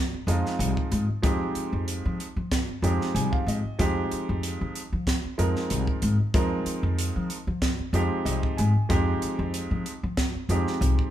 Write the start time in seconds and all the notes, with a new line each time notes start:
0.13 muted upright bass stroke
0.27 F2 F3 G#3 C4 D#4 F4, closed hi-hat
0.46 snare
0.59 C2, closed hi-hat
0.77 kick
0.92 G#2, closed hi-hat
1.09 muted upright bass stroke
1.22 F2 F3 G#3 C4 D#4 G4, kick, closed hi-hat
1.55 muted upright bass stroke, closed hi-hat
1.73 F2
1.88 closed hi-hat
2.05 F3
2.20 closed hi-hat
2.36 F3
2.52 kick, snare, closed hi-hat
2.68 muted upright bass stroke
2.82 F2 F3 G#3 C4 D#4 G4, closed hi-hat
3.01 snare
3.15 C2 G#5, closed hi-hat
3.32 F5, kick
3.47 G#2 D#5, closed hi-hat
3.65 muted upright bass stroke
3.79 F2 F3 G#3 C4 D#4 G4, kick, closed hi-hat
4.12 muted upright bass stroke, closed hi-hat
4.29 F2
4.43 closed hi-hat
4.61 F3
4.75 closed hi-hat
4.93 F3
5.07 kick, snare, closed hi-hat
5.24 muted upright bass stroke
5.38 F2 F3 G#3 C4 D#4 A#4, closed hi-hat
5.56 snare
5.70 C2, closed hi-hat
5.87 kick
6.02 G#2, closed hi-hat
6.20 muted upright bass stroke
6.34 F2 F3 G#3 C4 D#4 A#4, kick, closed hi-hat
6.66 muted upright bass stroke, closed hi-hat
6.83 F2
6.99 closed hi-hat
7.16 F3
7.30 closed hi-hat
7.47 F3
7.62 kick, snare, closed hi-hat
7.79 muted upright bass stroke
7.93 F2 F3 G#3 C4 D#4 G4, closed hi-hat
8.25 C2 D#5, closed hi-hat
8.43 kick
8.57 G#2 G#5, closed hi-hat
8.76 muted upright bass stroke
8.89 F2 F3 G#3 C4 D#4 G4, kick, closed hi-hat
9.22 muted upright bass stroke, closed hi-hat
9.39 F2
9.54 closed hi-hat
9.71 F3
9.86 closed hi-hat
10.03 F3
10.17 kick, snare, closed hi-hat
10.35 muted upright bass stroke
10.49 F2 F3 G#3 C4 D#4 G4, closed hi-hat
10.67 snare
10.81 C2, closed hi-hat
10.99 kick